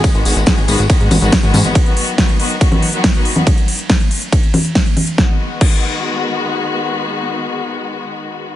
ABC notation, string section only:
X:1
M:4/4
L:1/16
Q:1/4=140
K:G#m
V:1 name="String section"
z [D,G,B,F] [D,G,B,F]2 [D,G,B,F]2 [D,G,B,F]2 [D,G,B,F] [D,G,B,F]2 [D,G,B,F]2 [D,G,B,F]2 [D,G,B,F] | z [D,F,B,F] [D,F,B,F]2 [D,F,B,F]2 [D,F,B,F]2 [D,F,B,F] [D,F,B,F]2 [D,F,B,F]2 [D,F,B,F]2 [D,F,B,F] | z16 | [D,G,B,F]16- |
[D,G,B,F]16 |]